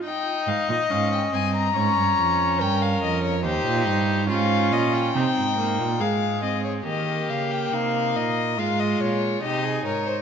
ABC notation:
X:1
M:4/4
L:1/16
Q:1/4=70
K:Ab
V:1 name="Violin"
g2 f e f g a b4- b g f e d | c4 f2 e g4- g f2 e d | e2 f g f2 e2 f e d2 e2 d2 |]
V:2 name="Violin"
e8 d4 B4 | G4 F4 E4 A4 | G4 E4 F4 G A B c |]
V:3 name="Viola"
E4 D2 C2 D8 | E4 D4 C2 B,2 A,2 C2 | B,8 A,4 E4 |]
V:4 name="Cello" clef=bass
z2 A,, B,, A,,2 G,,2 A,, G,, F,,2 G,,2 F,,2 | E,, B,, G,,2 A,,2 B,,2 C, A,,2 B,, A,,4 | E,2 D,2 C,2 B,,2 A,,2 B,,2 C,2 A,,2 |]